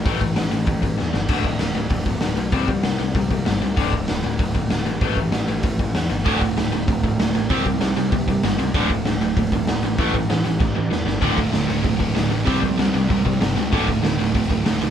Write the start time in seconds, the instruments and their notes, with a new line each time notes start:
0.05 picked electric bass A1, overdriven electric guitar A2 E3 A3, kick, open hi-hat
0.21 picked electric bass A1, overdriven electric guitar A2 E3, kick, open hi-hat
0.36 picked electric bass A1, overdriven electric guitar A2 E3, snare, open hi-hat
0.51 picked electric bass A1, overdriven electric guitar A2 E3, open hi-hat
0.66 picked electric bass A1, overdriven electric guitar A2 E3, kick, open hi-hat
0.82 picked electric bass A1, overdriven electric guitar A2 E3, kick, open hi-hat
0.98 picked electric bass E2, overdriven electric guitar A2 E3, snare
1.13 picked electric bass G1, overdriven electric guitar A2 E3, snare
1.28 picked electric bass D1, overdriven electric guitar D2 A2 D3, kick, open hi-hat, crash
1.43 overdriven electric guitar D2 A2, kick, open hi-hat
1.59 picked electric bass D1, overdriven electric guitar D2 A2, snare, open hi-hat
1.75 picked electric bass D1, overdriven electric guitar D2 A2, open hi-hat
1.90 picked electric bass D1, overdriven electric guitar D2 A2, kick, open hi-hat
2.05 picked electric bass D1, overdriven electric guitar D2 A2, kick, open hi-hat
2.21 picked electric bass D1, overdriven electric guitar D2 A2, snare, open hi-hat
2.37 picked electric bass B1, overdriven electric guitar D2 A2, open hi-hat
2.52 picked electric bass C2, overdriven electric guitar C3 G3 C4, kick, open hi-hat
2.68 picked electric bass C2, overdriven electric guitar C3 G3, kick, open hi-hat
2.83 picked electric bass C2, overdriven electric guitar C3 G3, snare, open hi-hat
2.98 picked electric bass C2, overdriven electric guitar C3 G3, open hi-hat
3.15 picked electric bass C2, overdriven electric guitar C3 G3, kick, open hi-hat
3.30 picked electric bass C2, overdriven electric guitar C3 G3, kick, open hi-hat
3.45 picked electric bass G1, overdriven electric guitar C3 G3, snare, open hi-hat
3.62 picked electric bass C2, overdriven electric guitar C3 G3, open hi-hat
3.77 picked electric bass D1, overdriven electric guitar D2 A2 D3, kick, open hi-hat
3.93 overdriven electric guitar D2 A2, kick, open hi-hat
4.08 picked electric bass D1, overdriven electric guitar D2 A2, snare, open hi-hat
4.23 picked electric bass D1, overdriven electric guitar D2 A2, open hi-hat
4.39 picked electric bass D1, overdriven electric guitar D2 A2, kick, open hi-hat
4.55 picked electric bass D1, overdriven electric guitar D2 A2, kick, open hi-hat
4.70 picked electric bass D1, overdriven electric guitar D2 A2, snare, open hi-hat
4.86 picked electric bass A1, overdriven electric guitar D2 A2, open hi-hat
5.01 picked electric bass A1, overdriven electric guitar A2 E3 A3, kick, open hi-hat
5.16 picked electric bass A1, overdriven electric guitar A2 E3, kick, open hi-hat
5.32 picked electric bass A1, overdriven electric guitar A2 E3, snare, open hi-hat
5.48 picked electric bass A1, overdriven electric guitar A2 E3, open hi-hat
5.63 picked electric bass A1, overdriven electric guitar A2 E3, kick, open hi-hat
5.79 picked electric bass A1, overdriven electric guitar A2 E3, kick, open hi-hat
5.94 picked electric bass E2, overdriven electric guitar A2 E3, snare, open hi-hat
6.09 picked electric bass G1, overdriven electric guitar A2 E3, open hi-hat
6.24 picked electric bass D1, overdriven electric guitar D2 A2 D3, kick, open hi-hat
6.41 overdriven electric guitar D2 A2, kick, open hi-hat
6.57 picked electric bass D1, overdriven electric guitar D2 A2, snare, open hi-hat
6.72 picked electric bass D1, overdriven electric guitar D2 A2, open hi-hat
6.88 picked electric bass D1, overdriven electric guitar D2 A2, kick, open hi-hat
7.03 picked electric bass D1, overdriven electric guitar D2 A2, kick, open hi-hat
7.19 picked electric bass D1, overdriven electric guitar D2 A2, snare, open hi-hat
7.35 picked electric bass A1, overdriven electric guitar D2 A2, open hi-hat
7.50 picked electric bass C2, overdriven electric guitar C3 G3 C4, kick, open hi-hat
7.65 picked electric bass C2, overdriven electric guitar C3 G3, kick, open hi-hat
7.81 picked electric bass C2, overdriven electric guitar C3 G3, snare, open hi-hat
7.96 picked electric bass C2, overdriven electric guitar C3 G3, open hi-hat
8.12 picked electric bass C2, overdriven electric guitar C3 G3, kick, open hi-hat
8.28 picked electric bass C2, overdriven electric guitar C3 G3, kick, open hi-hat
8.43 picked electric bass G1, overdriven electric guitar C3 G3, snare, open hi-hat
8.58 picked electric bass C#2, overdriven electric guitar C3 G3, open hi-hat
8.74 picked electric bass D1, overdriven electric guitar D2 A2 D3, kick, open hi-hat
8.90 overdriven electric guitar D2 A2, kick, open hi-hat
9.05 picked electric bass D1, overdriven electric guitar D2 A2, snare, open hi-hat
9.21 picked electric bass D1, overdriven electric guitar D2 A2, open hi-hat
9.37 picked electric bass D1, overdriven electric guitar D2 A2, kick, open hi-hat
9.52 picked electric bass D1, overdriven electric guitar D2 A2, kick, open hi-hat
9.67 picked electric bass D1, overdriven electric guitar D2 A2, snare, open hi-hat
9.83 picked electric bass A1, overdriven electric guitar D2 A2, open hi-hat
9.98 picked electric bass A1, overdriven electric guitar A2 E3 A3, kick, open hi-hat
10.14 picked electric bass A1, overdriven electric guitar A2 E3, kick, open hi-hat
10.30 picked electric bass A1, overdriven electric guitar A2 E3, snare, open hi-hat
10.44 picked electric bass A1, overdriven electric guitar A2 E3, open hi-hat
10.59 picked electric bass A1, overdriven electric guitar A2 E3, kick, snare
10.75 picked electric bass A1, overdriven electric guitar A2 E3
10.90 picked electric bass E2, overdriven electric guitar A2 E3, snare
11.06 picked electric bass G1, overdriven electric guitar A2 E3, snare
11.21 picked electric bass D1, overdriven electric guitar D2 A2 D3, kick, open hi-hat
11.37 overdriven electric guitar D2 A2, distorted electric guitar D3, kick, open hi-hat
11.52 picked electric bass D1, overdriven electric guitar D2 A2, distorted electric guitar D3, snare, open hi-hat
11.67 picked electric bass D1, overdriven electric guitar D2 A2, distorted electric guitar D3, open hi-hat
11.83 picked electric bass D1, overdriven electric guitar D2 A2, distorted electric guitar D3, kick, open hi-hat
12.00 picked electric bass D1, overdriven electric guitar D2 A2, distorted electric guitar D3, kick, open hi-hat
12.15 picked electric bass D1, overdriven electric guitar D2 A2, distorted electric guitar D3, snare, open hi-hat
12.30 picked electric bass A1, overdriven electric guitar D2 A2, distorted electric guitar D3, open hi-hat
12.46 picked electric bass C2, overdriven electric guitar C3 G3 C4, kick, open hi-hat
12.62 picked electric bass C2, overdriven electric guitar C3 G3, distorted electric guitar C4, kick, open hi-hat
12.79 picked electric bass C2, overdriven electric guitar C3 G3, distorted electric guitar C4, snare, open hi-hat
12.94 picked electric bass C2, overdriven electric guitar C3 G3, distorted electric guitar C4, open hi-hat
13.10 picked electric bass C2, overdriven electric guitar C3 G3, distorted electric guitar C4, kick, open hi-hat
13.25 picked electric bass C2, overdriven electric guitar C3 G3, distorted electric guitar C4, kick, open hi-hat
13.41 picked electric bass G1, overdriven electric guitar C3 G3, distorted electric guitar C4, snare, open hi-hat
13.55 picked electric bass C#2, overdriven electric guitar C3 G3, distorted electric guitar C4, open hi-hat
13.71 picked electric bass D1, overdriven electric guitar D2 A2 D3, kick, open hi-hat
13.87 overdriven electric guitar D2 A2, distorted electric guitar D3, kick, open hi-hat
14.03 picked electric bass D1, overdriven electric guitar D2 A2, distorted electric guitar D3, snare, open hi-hat
14.17 picked electric bass D1, overdriven electric guitar D2 A2, distorted electric guitar D3, open hi-hat
14.34 picked electric bass D1, overdriven electric guitar D2 A2, distorted electric guitar D3, kick, open hi-hat
14.49 picked electric bass D1, overdriven electric guitar D2 A2, distorted electric guitar D3, kick, open hi-hat
14.65 picked electric bass D1, overdriven electric guitar D2 A2, distorted electric guitar D3, snare, open hi-hat
14.80 picked electric bass B1, overdriven electric guitar D2 A2, distorted electric guitar D3, open hi-hat